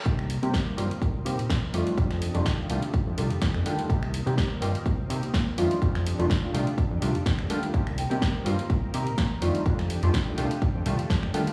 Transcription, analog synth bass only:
X:1
M:4/4
L:1/16
Q:"Swing 16ths" 1/4=125
K:Cdor
V:1 name="Analog synth bass" clef=bass
C,,3 C, z2 G,, z C,, z C, B,, B,, z F,, z | F,,3 F,,, z2 C,, z2 F,, C,, F,, F,, F,,, D, z | C,,3 C, z2 G,, z C,, z C, B,, B,, z F,, z | F,,3 F,,, z2 C,, z2 F,, C,, F,, F,, F,,, D, z |
C,,3 C, z2 G,, z C,, z C, B,, B,, z F,, z | F,,3 F,,, z2 C,, z2 F,, C,, F,, F,, F,,, D, z |]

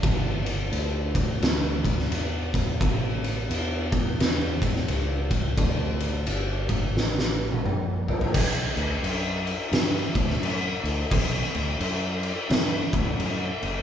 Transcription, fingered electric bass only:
X:1
M:4/4
L:1/8
Q:"Swing" 1/4=87
K:Bm
V:1 name="Fingered electric bass" clef=bass
G,,,2 D,,2 D,,2 E,,2 | A,,,2 E,,2 E,,2 C,,2 | D,,2 G,,,2 A,,,2 ^A,,,2 | B,,, D,, F,,2 G,, D,, F,, D,, |
B,,, D,, F,,2 G,, D,, F,, F,,, |]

